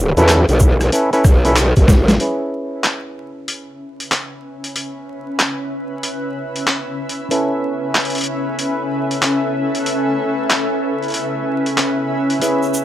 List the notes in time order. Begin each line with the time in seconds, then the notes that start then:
Already playing: B1
0.17 E2 C#4 E4 A4 B4, closed hi-hat, shaker
0.28 clap, closed hi-hat, shaker
0.49 B1, closed hi-hat, shaker
0.60 kick, shaker
0.81 cross-stick, closed hi-hat, shaker
0.92 C#4 E4 A4 B4, closed hi-hat, shaker
1.13 C#4 E4 A4 B4, closed hi-hat, shaker
1.24 B1, kick, cross-stick, shaker
1.45 C#4 E4 A4 B4, closed hi-hat, shaker
1.56 clap, closed hi-hat, shaker
1.76 A1, kick, closed hi-hat, shaker
1.88 kick, snare, shaker
2.08 snare, closed hi-hat, shaker
2.20 C#4 E4 G#4 B4, closed hi-hat
2.46 B4
2.84 clap, closed hi-hat
2.94 E5
3.48 closed hi-hat
4.00 closed hi-hat
4.12 clap, closed hi-hat
4.64 closed hi-hat
4.76 closed hi-hat
5.39 clap, closed hi-hat
6.03 closed hi-hat
6.56 closed hi-hat
6.67 clap, closed hi-hat
7.09 closed hi-hat
7.31 C#4 E4 A4 B4, closed hi-hat
7.64 A4
7.95 clap, closed hi-hat
8.00 closed hi-hat
8.05 closed hi-hat
8.10 closed hi-hat
8.15 closed hi-hat
8.18 closed hi-hat
8.21 closed hi-hat
8.24 closed hi-hat
8.59 closed hi-hat
9.11 closed hi-hat
9.22 clap, closed hi-hat
9.75 closed hi-hat
9.86 closed hi-hat
10.50 clap, closed hi-hat
11.03 closed hi-hat
11.05 closed hi-hat
11.08 closed hi-hat
11.10 closed hi-hat
11.12 closed hi-hat
11.14 closed hi-hat
11.66 closed hi-hat
11.78 clap, closed hi-hat
12.30 closed hi-hat
12.41 C#4 E4 G#4 B4, closed hi-hat, shaker
12.62 shaker
12.74 shaker